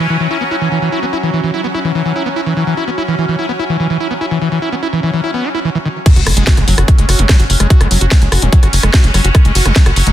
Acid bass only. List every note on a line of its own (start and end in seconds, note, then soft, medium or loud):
0.10 0.17 E3 medium
0.20 0.28 E3 medium
0.31 0.38 E4 medium
0.41 0.44 B3 medium
0.51 0.56 E4 loud
0.61 0.69 E3 medium
0.72 0.79 E3 medium
0.82 0.89 E3 medium
0.92 1.00 E4 medium
1.03 1.05 B3 medium
1.13 1.18 E4 loud
1.23 1.30 E3 medium
1.33 1.41 E3 medium
1.44 1.51 E3 medium
1.54 1.61 E4 medium
1.64 1.67 B3 medium
1.74 1.79 E4 loud
1.85 1.92 E3 medium
1.95 2.02 E3 medium
2.05 2.13 E3 medium
2.16 2.23 E4 medium
2.26 2.29 B3 medium
2.36 2.41 E4 loud
2.46 2.54 E3 medium
2.57 2.64 E3 medium
2.67 2.74 E3 medium
2.77 2.84 E4 medium
2.88 2.90 B3 medium
2.98 3.03 E4 loud
3.08 3.15 E3 medium
3.18 3.26 E3 medium
3.29 3.36 E3 medium
3.39 3.46 E4 medium
3.49 3.52 B3 medium
3.59 3.64 E4 loud
3.70 3.77 E3 medium
3.80 3.87 E3 medium
3.90 3.97 E3 medium
4.00 4.08 E4 medium
4.11 4.14 B3 medium
4.21 4.26 E4 loud
4.31 4.39 E3 medium
4.42 4.49 E3 medium
4.52 4.59 E3 medium
4.62 4.69 E4 medium
4.72 4.75 B3 medium
4.83 4.88 E4 loud
4.93 5.00 E3 medium
5.03 5.11 E3 medium
5.13 5.21 E3 medium
5.24 5.31 E4 medium
5.34 5.46 B3 medium
5.44 5.49 E4 medium
5.55 5.59 E4 loud
5.65 5.70 E3 medium
5.75 5.78 E3 loud
5.85 5.88 D#3 medium
6.06 6.13 F#3 medium
6.16 6.21 F#4 medium
6.37 6.44 G#3 medium
6.47 6.59 F#4 medium
6.57 6.65 F#3 medium
6.68 6.75 F#3 medium
6.78 6.83 F#4 medium
6.98 7.06 G#3 medium
7.09 7.20 F#4 medium
7.19 7.26 F#3 medium
7.29 7.37 F#3 medium
7.40 7.44 F#4 medium
7.60 7.67 G#3 medium
7.70 7.82 F#4 medium
7.81 7.88 F#3 medium
7.91 7.98 F#3 medium
8.01 8.06 F#4 medium
8.22 8.29 G#3 medium
8.32 8.44 F#4 medium
8.42 8.50 F#3 medium
8.53 8.60 F#3 medium
8.63 8.68 F#4 medium
8.83 8.91 G#3 medium
8.94 9.05 F#4 medium
9.04 9.11 F#3 medium
9.14 9.21 F#3 medium
9.24 9.29 F#4 medium
9.45 9.52 G#3 medium
9.55 9.67 F#4 medium
9.66 9.73 F#3 medium
9.76 9.83 F#3 medium
9.86 9.91 F#4 medium
10.07 10.12 G#3 medium